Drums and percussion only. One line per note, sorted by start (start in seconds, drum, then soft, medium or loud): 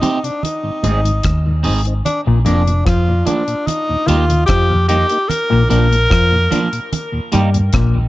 0.03 closed hi-hat medium
0.03 high conga soft
0.03 low conga medium
0.24 closed hi-hat soft
0.43 closed hi-hat medium
0.43 low conga medium
0.84 closed hi-hat medium
0.84 high conga medium
0.84 low conga medium
1.05 closed hi-hat medium
1.23 kick loud
1.23 cross-stick loud
1.23 closed hi-hat medium
1.23 high conga medium
1.64 open hi-hat medium
1.85 closed hi-hat medium
2.06 closed hi-hat medium
2.06 low conga medium
2.46 closed hi-hat medium
2.67 closed hi-hat soft
2.87 kick loud
2.87 cross-stick loud
2.87 closed hi-hat medium
3.27 closed hi-hat medium
3.27 high conga soft
3.27 low conga medium
3.48 closed hi-hat soft
3.67 closed hi-hat medium
3.67 low conga medium
4.08 closed hi-hat medium
4.08 low conga medium
4.30 closed hi-hat medium
4.48 kick loud
4.48 cross-stick loud
4.48 closed hi-hat medium
4.89 closed hi-hat medium
5.09 closed hi-hat medium
5.30 closed hi-hat medium
5.30 low conga medium
5.71 closed hi-hat medium
5.93 closed hi-hat soft
6.11 kick loud
6.11 cross-stick loud
6.11 closed hi-hat medium
6.52 closed hi-hat medium
6.52 high conga soft
6.52 low conga medium
6.73 closed hi-hat soft
6.93 closed hi-hat medium
6.93 low conga medium
7.32 closed hi-hat medium
7.32 low conga medium
7.54 closed hi-hat medium
7.73 kick loud
7.73 cross-stick loud
7.73 closed hi-hat medium